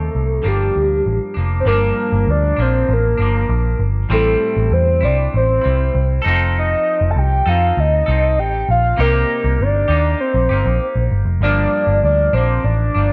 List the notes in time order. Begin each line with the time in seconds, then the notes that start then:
Already playing: C3 A#3 D#4 G4 A4
0.15 C2
0.42 G1 G2 F3 A#3 D4
0.48 G4
0.76 D2
1.06 A1
1.34 F1 A#3 D4
1.38 F3
1.60 C5
1.65 G1 G2 F3 A#3 D4 A#4
2.12 G1
2.27 D2 D5
2.57 A#1 F3 A#3 D4
2.62 C5
2.89 A1
2.93 A#4
3.18 G1 A#3 D4
3.22 F3
3.49 A#1
3.79 G1
4.09 A1 A2 G3 C4 E4 A4
4.57 A1
4.71 E2 C5
5.01 C2 C4 E4 D5
5.05 G3
5.34 A1 C5
5.61 G3 C4 E4
5.66 C2
5.95 C2
6.22 F1 D#4 A4
6.27 F3 C4
6.58 D#5
7.01 F1
7.11 A5
7.16 C2 G5
7.46 F2 C4 D#4 A4 F5
7.77 D2 D#5
8.06 C2 C4 D#4 A4
8.39 A1 G5
8.69 A#1 F5
8.97 C2 C3 A#3 D#4 G4 A#4
9.44 C2
9.60 G1 D5
9.88 D#2 D#4 G4
9.92 A#3
10.20 C5
10.34 A#1
10.49 G1 A#3 D#4 G4
10.65 A#1
10.95 A#1
11.11 G1
11.25 F1
11.41 G1 G2 F3 A#3 D4 D5
11.87 G1
12.03 D2 D5
12.33 A#1 A#3 D4 C5
12.38 F3
12.64 A1 D5
12.94 G1 F3 A#3 D4